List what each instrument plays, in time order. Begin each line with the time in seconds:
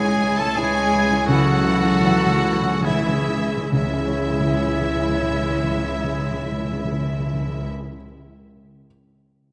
Already playing: felt piano C#2 C#3 G#3 C#4 E4, double bass section C#2, harp C#3 C#4 E4 C#5, french horn section C#3 E4, cello section G#3, violin section G#4 G#5, oboe G#4, flute C#5
0.01 timpani C#3, viola section G#3 C#4, harp E5
0.08 timpani C#3
0.16 timpani C#3, harp G#5
0.21 timpani C#3, viola section E3 E4
0.32 timpani C#3
0.37 timpani C#3, viola section G#3 C#4, cello section A3, oboe A4, violin section A4 A5, flute C#5, harp E5
0.47 timpani C#3
0.53 timpani C#3, viola section E3 E4, cello section G#3, felt piano G#3, oboe G#4, violin section G#4 G#5, flute C#5, harp C#5
0.57 felt piano C#4 E4
0.63 timpani C#3
0.74 viola section G#3 C#4
0.80 timpani C#3
0.87 timpani C#3, harp E4
0.92 timpani C#3, viola section E3 E4
1.03 timpani C#3
1.09 timpani C#3, viola section G#3 C#4, harp C#4
1.19 timpani C#3
1.26 felt piano C#2 C#3, harp C#3, timpani C#3, viola section E3 E4, cello section F#3, oboe F#4, violin section F#4 F#5, flute A4
1.34 timpani C#3
1.43 timpani C#3, harp E3, viola section G#3 C#4
1.51 timpani C#3
1.59 timpani C#3
1.63 timpani C#3, viola section E3 E4, harp E4
1.75 timpani C#3
1.83 timpani C#3, viola section G#3 C#4
1.92 timpani C#3
2.00 timpani C#3, viola section E3 E4, felt piano E3, harp C#5
2.04 felt piano C#4 E4
2.09 timpani C#3
2.18 timpani C#3, viola section C#4
2.22 viola section G#3, harp E5
2.26 timpani C#3
2.36 timpani C#3
2.41 timpani C#3, viola section E3 E4, harp G#5
2.53 timpani C#3
2.62 timpani C#3, viola section G#3 C#4, harp E5
2.72 timpani C#3
2.81 timpani C#3, viola section E3 E4, flute G#4
2.85 cello section E3, felt piano G#3 C#4 E4, oboe E4, violin section E4 E5, harp C#5
2.90 timpani C#3
2.99 timpani C#3
3.06 timpani C#3, viola section G#3 C#4, harp G#4
3.19 timpani C#3
3.27 timpani C#3, viola section E3 E4, harp E4
3.38 timpani C#3
3.48 timpani C#3, viola section G#3 C#4, harp C#4
3.57 timpani C#3
3.71 double bass section C#2, felt piano C#2, french horn section C#3 E4, timpani C#3, harp C#3, cello section E3, viola section G#3 E4, violin section E4 E5, flute C#5, oboe E5
3.79 timpani C#3, felt piano C#3, harp G#3
3.86 timpani C#3, felt piano G#3, harp C#4
3.93 timpani C#3, felt piano C#4, harp E4
3.99 timpani C#3, felt piano E4, harp C#5
4.06 timpani C#3, felt piano C#5
4.13 timpani C#3
4.20 timpani C#3
4.26 timpani C#3
4.33 timpani C#3
4.40 timpani C#3
4.46 timpani C#3
4.54 timpani C#3
4.60 timpani C#3
4.68 timpani C#3
4.74 timpani C#3
4.81 timpani C#3
4.89 timpani C#3
4.96 timpani C#3
5.03 timpani C#3
5.10 timpani C#3
5.16 timpani C#3
5.23 timpani C#3
5.30 timpani C#3
5.36 timpani C#3
5.43 timpani C#3
5.50 timpani C#3
5.57 timpani C#3
5.64 timpani C#3
5.71 timpani C#3
5.77 timpani C#3
5.84 timpani C#3
5.91 timpani C#3
5.97 timpani C#3
6.04 timpani C#3
6.12 timpani C#3
6.19 timpani C#3
6.25 timpani C#3
6.32 timpani C#3
6.39 timpani C#3
6.46 timpani C#3
6.52 timpani C#3
6.58 timpani C#3
6.65 timpani C#3
6.72 timpani C#3
6.78 timpani C#3
6.85 timpani C#3
6.92 timpani C#3
6.99 timpani C#3
7.06 timpani C#3
7.13 timpani C#3
7.20 timpani C#3
7.26 timpani C#3
7.33 timpani C#3
7.41 timpani C#3
7.48 timpani C#3
7.55 timpani C#3
7.62 timpani C#3